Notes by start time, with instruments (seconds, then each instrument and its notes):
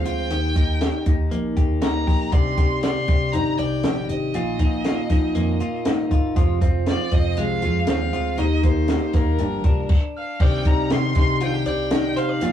Already playing: clean electric guitar F3 G#3 C4
0.05 picked electric bass D2, clean electric guitar F4, violin G5, closed hi-hat
0.30 picked electric bass D#2, clean electric guitar D#3 G4, closed hi-hat
0.56 picked electric bass D#2, clean electric guitar D#4, kick, closed hi-hat
0.81 clean electric guitar G4, snare, closed hi-hat
1.06 picked electric bass D#2, clean electric guitar D#4, kick, closed hi-hat
1.31 picked electric bass A#1, clean electric guitar A#3, closed hi-hat
1.57 picked electric bass D#2, clean electric guitar G4, kick, closed hi-hat
1.82 picked electric bass D2, clean electric guitar D#4, violin A#5, snare, closed hi-hat
2.07 picked electric bass A#1, clean electric guitar G4, kick, open hi-hat
2.32 picked electric bass C2, steel-string acoustic guitar C3 D#3 C4 D4 G4, clean electric guitar D5, violin C6, kick, closed hi-hat
2.57 picked electric bass C2, steel-string acoustic guitar C4 D4 G4, kick, closed hi-hat
2.82 steel-string acoustic guitar D#3 C4 D4 G4, clean electric guitar D5, violin C6, snare, closed hi-hat
3.08 picked electric bass C2, steel-string acoustic guitar C4 D4 G4, kick, closed hi-hat
3.32 picked electric bass G1, steel-string acoustic guitar C3 D#3 C4 D4 G4, clean electric guitar D#4, violin A#5, closed hi-hat
3.57 picked electric bass C2, steel-string acoustic guitar D4 G4, clean electric guitar D5, violin G5, closed hi-hat
3.62 steel-string acoustic guitar C4
3.83 picked electric bass A#1, steel-string acoustic guitar D#3 C4 D4 G4, snare, closed hi-hat
4.09 picked electric bass G#1, steel-string acoustic guitar D4 G4, violin D#5, closed hi-hat
4.13 steel-string acoustic guitar C4
4.34 picked electric bass A#1, steel-string acoustic guitar A#2 D#3 A#3 D#4 F4, closed hi-hat
4.59 picked electric bass A#1, steel-string acoustic guitar A#3 D#4 F4, kick, closed hi-hat
4.84 steel-string acoustic guitar D#3 A#3 D#4, snare, closed hi-hat
4.89 steel-string acoustic guitar F4
5.10 picked electric bass A#1, steel-string acoustic guitar A#3 D#4 F4, kick, snare, closed hi-hat
5.35 picked electric bass F2, steel-string acoustic guitar A#2 D#3 A#3 D#4 F4, closed hi-hat
5.60 picked electric bass A#2, steel-string acoustic guitar A#3 D#4 F4, closed hi-hat
5.84 picked electric bass G#2, steel-string acoustic guitar D#3 A#3 D#4 F4, snare, closed hi-hat
6.10 picked electric bass G1, steel-string acoustic guitar A#3 D#4 F4, kick, closed hi-hat
6.35 picked electric bass F1, steel-string acoustic guitar F2 C3 F3 G#3 C4 F4, kick, closed hi-hat
6.60 picked electric bass F1, steel-string acoustic guitar F3 G#3 C4 F4, kick, closed hi-hat
6.86 steel-string acoustic guitar F3 G#3 C4 F4, violin D5, snare, closed hi-hat
7.11 picked electric bass F1, steel-string acoustic guitar F3 G#3 C4 F4, violin D#5, kick, closed hi-hat
7.36 picked electric bass C2, steel-string acoustic guitar F2 C3 F3 G#3 C4 F4, violin F5, closed hi-hat
7.62 picked electric bass F2, steel-string acoustic guitar F3 G#3 C4 F4, closed hi-hat
7.87 picked electric bass D#2, steel-string acoustic guitar F3 G#3 C4 F4, violin F5, snare, closed hi-hat
8.12 picked electric bass D2, steel-string acoustic guitar F3 G#3 C4 F4, closed hi-hat
8.38 picked electric bass D#2, steel-string acoustic guitar D#3 A#3 D#4 G4, violin D#5, closed hi-hat
8.62 picked electric bass D#2, steel-string acoustic guitar A#3 D#4 G4, violin C5, kick, closed hi-hat
8.88 steel-string acoustic guitar D#3 A#3 D#4 G4, snare, closed hi-hat
9.13 picked electric bass D#2, steel-string acoustic guitar A#3 D#4 G4, violin A#4, kick, snare, closed hi-hat
9.39 picked electric bass G1, steel-string acoustic guitar G2 D3 F3 A#3 D4 G4, closed hi-hat
9.64 picked electric bass C2, steel-string acoustic guitar F3 A#3 D4 G4, kick, closed hi-hat
9.89 kick, crash
10.17 violin F5, glockenspiel F6
10.40 picked electric bass C2, steel-string acoustic guitar C3 D#3 C4 D4 G4, clean electric guitar D5, violin G5, glockenspiel G6, kick, crash
10.65 picked electric bass C2, steel-string acoustic guitar C4 D4 G4, clean electric guitar D#4, violin A#5, glockenspiel A#6, kick, closed hi-hat
10.90 picked electric bass C3, steel-string acoustic guitar D#3 D4 G4, violin C6, glockenspiel C7, snare, closed hi-hat
11.15 picked electric bass C2, steel-string acoustic guitar C4 D4 G4, clean electric guitar D#4, violin C6, glockenspiel C7, kick, snare, closed hi-hat
11.40 steel-string acoustic guitar C3 D#3 C4 D4 G4, clean electric guitar F4, violin G5, glockenspiel G6, closed hi-hat
11.54 clean electric guitar G4
11.66 picked electric bass C2, steel-string acoustic guitar C4 D4 G4, clean electric guitar D5, violin G5, glockenspiel G6, closed hi-hat
11.91 steel-string acoustic guitar D#3 C4 D4 G4, clean electric guitar D#4, snare, closed hi-hat
12.16 picked electric bass G#1, steel-string acoustic guitar C4 D4 G4, clean electric guitar C5, violin F5, glockenspiel F6, closed hi-hat
12.29 clean electric guitar D5
12.41 picked electric bass A#1, steel-string acoustic guitar A#2 D#3 A#3 D#4 F4, closed hi-hat